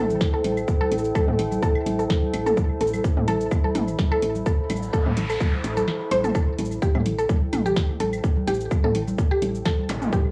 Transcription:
Already playing: A1 E4 A4 C5 G5
0.10 high conga, cabasa
0.21 kick, snare, cabasa
0.34 A4
0.44 A1, closed hi-hat, high conga
0.57 cabasa, claves
0.68 kick, cabasa
0.81 A4, high conga
0.92 A1, closed hi-hat, cabasa
0.98 cabasa
1.04 cabasa
1.15 A4, kick, high conga, cabasa, claves
1.28 A2, mid tom
1.39 A1, closed hi-hat
1.52 high conga, cabasa
1.62 A4, kick, cabasa
1.75 claves
1.86 A1, closed hi-hat, high conga, cabasa
1.99 A4, cabasa
2.10 kick, snare, cabasa
2.23 high conga
2.33 A1, closed hi-hat, claves
2.46 A4, mid tom, cabasa
2.57 kick, high conga, cabasa
2.80 A1 A4, closed hi-hat, cabasa
2.87 cabasa
2.93 high conga, cabasa, claves
2.99 B5
3.04 kick, cabasa
3.17 A2, mid tom
3.28 A1 A4, closed hi-hat, high conga
3.41 cabasa
3.51 kick, cabasa, claves
3.64 A4, high conga
3.75 A1, closed hi-hat, mid tom, cabasa
3.88 cabasa
3.99 kick, snare, high conga, cabasa
4.12 A4, claves
4.22 A1, closed hi-hat
4.35 high conga, cabasa
4.46 A4, kick, noise sweep, cabasa
4.70 A1, closed hi-hat, high conga, cabasa, claves
4.76 cabasa
4.82 cabasa
4.93 A4, kick, cabasa
5.06 A2, mid tom, high conga
5.17 A1, closed hi-hat, cabasa
5.30 A4, cabasa, claves
5.41 kick, high conga, cabasa
5.64 A1, closed hi-hat, cabasa
5.77 A4, high conga, cabasa
5.88 snare, cabasa, claves
6.11 A1 C5, closed hi-hat, high conga, cabasa
6.24 A4, mid tom, cabasa
6.35 A4, kick, cabasa, claves
6.59 A1, closed hi-hat, high conga, cabasa
6.65 cabasa
6.71 cabasa
6.76 G5
6.82 G4, kick, cabasa
6.95 A2, mid tom, high conga, claves
7.06 A1, closed hi-hat
7.19 A4, cabasa
7.29 kick, high conga, cabasa
7.53 A1, closed hi-hat, mid tom, cabasa, claves
7.66 G4, high conga, cabasa
7.77 kick, snare, cabasa
8.00 A1 A4, closed hi-hat, high conga
8.13 cabasa, claves
8.24 kick, cabasa
8.37 high conga
8.47 A1 G4, closed hi-hat, cabasa
8.54 cabasa
8.60 cabasa
8.71 kick, high conga, cabasa, claves
8.84 A2 A4, mid tom
8.95 A1, closed hi-hat
9.08 high conga, cabasa
9.18 kick, cabasa
9.31 G4, claves
9.42 A1, closed hi-hat, high conga, cabasa
9.55 cabasa
9.66 A4, kick, snare, cabasa
9.79 high conga
9.89 A1, closed hi-hat, zap, claves
10.02 mid tom, cabasa
10.13 G4, kick, high conga, cabasa

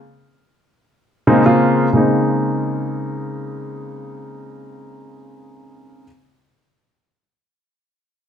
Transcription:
1.27 C#3 G#3 A#3 C4 D#4
1.46 C#3 G#3 A#3 C4 F4
1.93 C#3 G#3 A#3 C4 D#4

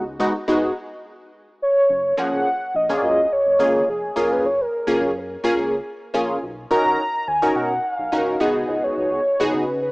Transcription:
Already playing: C#2
0.20 G#3 B3 D#4 F#4
0.48 G#2 G#3 B3 D#4 F#4
1.62 C#5
1.90 F#1
2.17 F3 A#3 C#4 G#4 F#5
2.33 F#1
2.75 A#1 D#5
2.89 A#3 C#4 F4 G#4
2.97 D5
3.03 F#2 D#5
3.33 C#5
3.46 F#1
3.59 G#1 A#3 C#4 F4 G#4
3.88 F1 G#4
4.16 F#1 A#3 C#4 F4 G#4 A#4
4.32 B4
4.44 F#1 C#5
4.61 A#4
4.87 F#1 A#3 C#4 F4 G#4
5.01 F#2
5.44 A#3 C#4 F4 G#4
5.57 C#2
6.14 A#1 A#3 C#4 F4 G#4
6.43 B1
6.71 C#4 D#4 F#4 A#4 A#5
6.86 B1
7.27 D#2 G#5
7.42 C#4 D#4 F#4 A#4
7.56 B2 F#5
7.84 F5
7.99 B1
8.12 C#2 C#4 D#4 F#4 A#4
8.40 C#2 B3 D#4 F#4 G#4 D#5
8.69 C#2
8.84 C#5
8.97 C#2 C#5
9.40 C#2 B3 D#4 F#4 G#4
9.53 C#3 B4
9.82 B4

